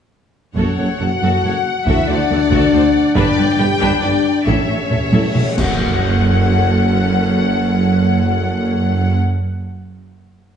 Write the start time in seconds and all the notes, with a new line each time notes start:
0.54 F#1 F#2 C#4 F#4 A4 C#5 F#5, taiko
0.78 F#1 F#2 A4 C#5
0.99 F#1 F#2 F#4 A4 F#5
1.21 F#1 F#2 F#4 A4
1.43 F#1 F#2 A4 C#5
1.86 D2 E4 F#4 A4 E5, taiko
2.08 D2 D4 A4 C5 D5
2.29 D2 A4
2.50 D2 F#4 A4, taiko
2.72 D2 A4 C5
3.15 G1 G2 D4 B4 D5 G5, taiko
3.37 G1 G2 B4
3.58 G1 G2 G4 B4 G5
3.80 G1 G2 D4 B4, taiko
4.01 G1 G2 D4 B4 D5
4.46 A1 A2 C#4 E4 A4 C#5 E5, taiko, reverse cymbal
4.67 A1 A2 A4 C#5
4.90 A1 A2 A4, taiko low
5.11 A1 A2 E4 A4, taiko high
5.34 A1 A2 A4 C#5, taiko mid
5.57 F#1 F#2 C#4 F#4 A4 F#5, concert bass drum, taiko, crash, impact